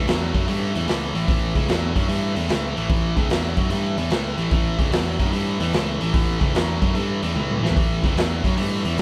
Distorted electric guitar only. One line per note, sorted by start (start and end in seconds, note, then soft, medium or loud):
0.07 0.31 A2 medium
0.07 0.32 F#3 medium
0.34 0.46 A2 medium
0.34 0.46 F#3 medium
0.48 0.72 A2 medium
0.48 0.72 E3 medium
0.75 0.86 A2 medium
0.75 0.87 E3 medium
0.87 1.12 A2 medium
0.87 1.12 E3 medium
1.14 1.27 A2 medium
1.14 1.27 E3 medium
1.28 1.52 A2 medium
1.28 1.53 E3 medium
1.55 1.67 A2 medium
1.55 1.67 E3 medium
1.68 1.93 A2 medium
1.68 1.93 F#3 medium
1.94 2.07 A2 medium
1.94 2.07 F#3 medium
2.08 2.33 A2 medium
2.08 2.33 E3 medium
2.35 2.47 A2 medium
2.35 2.48 E3 medium
2.49 2.74 A2 medium
2.49 2.74 E3 medium
2.76 2.88 A2 medium
2.76 2.88 E3 medium
2.89 3.14 A2 medium
2.89 3.14 E3 medium
3.17 3.28 A2 medium
3.17 3.29 E3 medium
3.29 3.54 A2 medium
3.29 3.55 F#3 medium
3.57 3.69 A2 medium
3.57 3.69 F#3 medium
3.70 3.95 A2 medium
3.70 3.95 E3 medium
3.98 4.10 A2 medium
3.98 4.10 E3 medium
4.11 4.36 A2 medium
4.11 4.36 E3 medium
4.38 4.50 A2 medium
4.38 4.50 E3 medium
4.51 4.76 A2 loud
4.51 4.76 E3 medium
4.79 4.90 A2 medium
4.79 4.91 E3 medium
4.92 5.17 A2 medium
4.92 5.17 F#3 medium
5.19 5.31 A2 medium
5.19 5.32 F#3 medium
5.32 5.57 A2 medium
5.32 5.57 E3 medium
5.59 5.72 A2 medium
5.59 5.72 E3 medium
5.74 5.98 A2 medium
5.74 5.98 E3 medium
6.01 6.12 A2 medium
6.01 6.13 E3 medium
6.13 6.38 A2 medium
6.13 6.38 E3 loud
6.40 6.53 A2 medium
6.40 6.53 E3 medium
6.54 6.79 A2 medium
6.54 6.79 F#3 loud
6.81 6.93 A2 medium
6.81 6.94 F#3 medium
6.95 7.19 A2 medium
6.95 7.20 E3 medium
7.22 7.34 A2 medium
7.22 7.35 E3 medium
7.35 7.60 A2 medium
7.35 7.60 E3 medium
7.63 7.75 A2 medium
7.63 7.75 E3 medium
7.76 8.01 A2 medium
7.76 8.01 E3 medium
8.03 8.15 A2 medium
8.03 8.16 E3 medium
8.17 8.41 A2 medium
8.17 8.42 F#3 loud
8.44 8.56 A2 medium
8.44 8.56 F#3 medium
8.57 8.82 A2 medium
8.57 8.82 E3 medium
8.84 8.96 A2 medium
8.84 8.96 E3 medium
8.98 9.02 A2 medium
8.98 9.02 E3 medium